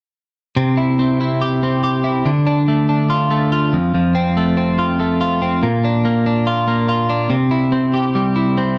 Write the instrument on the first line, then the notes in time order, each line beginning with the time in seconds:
clean electric guitar
0.57 C3
0.77 E4
0.99 C4
1.21 E4
1.41 G4
1.63 C4
1.83 G4
2.04 E4
2.26 D3
2.47 D4
2.68 A3
2.89 D4
3.10 F4
3.31 A3
3.52 F4
3.73 F2
3.94 F2
4.15 C4
4.37 A3
4.57 C4
4.79 F4
5.00 A3
5.21 F4
5.42 C4
5.63 A#2
5.85 D4
6.05 A#3
6.26 D4
6.47 F4
6.68 A#3
6.89 F4
7.10 D4
7.30 C3
7.51 E4
7.72 C4
7.94 G4
8.15 G3
8.36 E4
8.58 C4